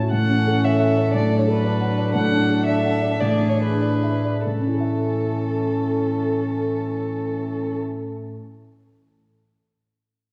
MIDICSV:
0, 0, Header, 1, 6, 480
1, 0, Start_track
1, 0, Key_signature, 3, "major"
1, 0, Tempo, 511073
1, 106, Time_signature, 2, 2, 24, 8
1, 2503, Tempo, 542986
1, 2983, Tempo, 597015
1, 3463, Tempo, 645856
1, 8309, End_track
2, 0, Start_track
2, 0, Title_t, "Violin"
2, 0, Program_c, 0, 40
2, 109, Note_on_c, 0, 78, 72
2, 605, Note_on_c, 0, 76, 57
2, 619, Note_off_c, 0, 78, 0
2, 1060, Note_off_c, 0, 76, 0
2, 1066, Note_on_c, 0, 74, 53
2, 1292, Note_off_c, 0, 74, 0
2, 1298, Note_on_c, 0, 73, 57
2, 1347, Note_off_c, 0, 73, 0
2, 1413, Note_on_c, 0, 71, 60
2, 2000, Note_off_c, 0, 71, 0
2, 2009, Note_on_c, 0, 78, 72
2, 2489, Note_off_c, 0, 78, 0
2, 2495, Note_on_c, 0, 76, 71
2, 2976, Note_on_c, 0, 74, 61
2, 2989, Note_off_c, 0, 76, 0
2, 3211, Note_on_c, 0, 73, 53
2, 3223, Note_off_c, 0, 74, 0
2, 3323, Note_off_c, 0, 73, 0
2, 3327, Note_on_c, 0, 71, 52
2, 3933, Note_off_c, 0, 71, 0
2, 3955, Note_on_c, 0, 69, 38
2, 6428, Note_off_c, 0, 69, 0
2, 8309, End_track
3, 0, Start_track
3, 0, Title_t, "Grand piano"
3, 0, Program_c, 1, 0
3, 0, Control_c, 1, 64, 127
3, 0, Note_on_c, 1, 45, 66
3, 0, Note_on_c, 1, 61, 52
3, 0, Note_on_c, 1, 64, 52
3, 0, Note_on_c, 1, 76, 53
3, 115, Note_off_c, 1, 45, 0
3, 115, Note_on_c, 1, 45, 47
3, 124, Control_c, 1, 64, 0
3, 129, Note_off_c, 1, 64, 0
3, 130, Note_off_c, 1, 61, 0
3, 133, Note_off_c, 1, 76, 0
3, 279, Note_on_c, 1, 61, 33
3, 280, Control_c, 1, 64, 127
3, 442, Note_on_c, 1, 69, 41
3, 535, Note_off_c, 1, 61, 0
3, 606, Note_on_c, 1, 73, 36
3, 697, Note_off_c, 1, 69, 0
3, 751, Note_on_c, 1, 76, 39
3, 858, Note_off_c, 1, 73, 0
3, 918, Note_on_c, 1, 73, 40
3, 1009, Note_off_c, 1, 76, 0
3, 1050, Note_off_c, 1, 45, 0
3, 1072, Note_on_c, 1, 45, 43
3, 1075, Note_off_c, 1, 73, 0
3, 1092, Control_c, 1, 64, 0
3, 1211, Control_c, 1, 64, 127
3, 1223, Note_on_c, 1, 62, 37
3, 1382, Note_on_c, 1, 69, 42
3, 1478, Note_off_c, 1, 62, 0
3, 1548, Note_on_c, 1, 74, 39
3, 1636, Note_off_c, 1, 69, 0
3, 1699, Note_on_c, 1, 78, 47
3, 1798, Note_off_c, 1, 74, 0
3, 1855, Note_on_c, 1, 74, 38
3, 1953, Note_off_c, 1, 78, 0
3, 1989, Note_off_c, 1, 45, 0
3, 2016, Note_off_c, 1, 74, 0
3, 2017, Note_on_c, 1, 45, 52
3, 2038, Control_c, 1, 64, 0
3, 2179, Control_c, 1, 64, 127
3, 2181, Note_on_c, 1, 62, 36
3, 2345, Note_on_c, 1, 69, 44
3, 2439, Note_off_c, 1, 62, 0
3, 2510, Note_on_c, 1, 74, 39
3, 2598, Note_off_c, 1, 69, 0
3, 2661, Note_on_c, 1, 78, 43
3, 2757, Note_off_c, 1, 74, 0
3, 2816, Note_on_c, 1, 74, 41
3, 2917, Note_off_c, 1, 78, 0
3, 2954, Note_off_c, 1, 45, 0
3, 2982, Note_off_c, 1, 74, 0
3, 2989, Note_on_c, 1, 45, 47
3, 2998, Control_c, 1, 64, 0
3, 3138, Control_c, 1, 64, 127
3, 3146, Note_on_c, 1, 62, 34
3, 3303, Note_on_c, 1, 68, 38
3, 3400, Note_off_c, 1, 62, 0
3, 3466, Note_on_c, 1, 74, 34
3, 3561, Note_off_c, 1, 68, 0
3, 3633, Note_on_c, 1, 76, 34
3, 3723, Note_off_c, 1, 74, 0
3, 3793, Note_on_c, 1, 74, 32
3, 3891, Note_off_c, 1, 76, 0
3, 3925, Note_off_c, 1, 45, 0
3, 3947, Note_on_c, 1, 45, 28
3, 3952, Note_off_c, 1, 74, 0
3, 3968, Control_c, 1, 64, 0
3, 3999, Note_on_c, 1, 57, 30
3, 4050, Note_on_c, 1, 61, 30
3, 4102, Note_on_c, 1, 64, 31
3, 4115, Control_c, 1, 64, 127
3, 4155, Note_on_c, 1, 69, 27
3, 4206, Note_on_c, 1, 76, 33
3, 6357, Control_c, 1, 64, 0
3, 6840, Note_off_c, 1, 45, 0
3, 6892, Note_off_c, 1, 57, 0
3, 6943, Note_off_c, 1, 61, 0
3, 6995, Note_off_c, 1, 64, 0
3, 7048, Note_off_c, 1, 69, 0
3, 7074, Note_off_c, 1, 76, 0
3, 8309, End_track
4, 0, Start_track
4, 0, Title_t, "Violin"
4, 0, Program_c, 2, 40
4, 105, Note_on_c, 2, 69, 56
4, 1980, Note_off_c, 2, 69, 0
4, 2022, Note_on_c, 2, 69, 53
4, 2982, Note_on_c, 2, 68, 51
4, 2994, Note_off_c, 2, 69, 0
4, 3761, Note_off_c, 2, 68, 0
4, 3949, Note_on_c, 2, 69, 41
4, 6425, Note_off_c, 2, 69, 0
4, 8309, End_track
5, 0, Start_track
5, 0, Title_t, "Viola"
5, 0, Program_c, 3, 41
5, 108, Note_on_c, 3, 61, 50
5, 1075, Note_on_c, 3, 62, 50
5, 1090, Note_off_c, 3, 61, 0
5, 2972, Note_off_c, 3, 62, 0
5, 2978, Note_on_c, 3, 62, 47
5, 3745, Note_off_c, 3, 62, 0
5, 3947, Note_on_c, 3, 61, 38
5, 6424, Note_off_c, 3, 61, 0
5, 8309, End_track
6, 0, Start_track
6, 0, Title_t, "Cello"
6, 0, Program_c, 4, 42
6, 101, Note_on_c, 4, 52, 39
6, 1071, Note_on_c, 4, 54, 43
6, 1085, Note_off_c, 4, 52, 0
6, 2971, Note_off_c, 4, 54, 0
6, 2976, Note_on_c, 4, 52, 40
6, 3744, Note_off_c, 4, 52, 0
6, 3950, Note_on_c, 4, 52, 32
6, 6425, Note_off_c, 4, 52, 0
6, 8309, End_track
0, 0, End_of_file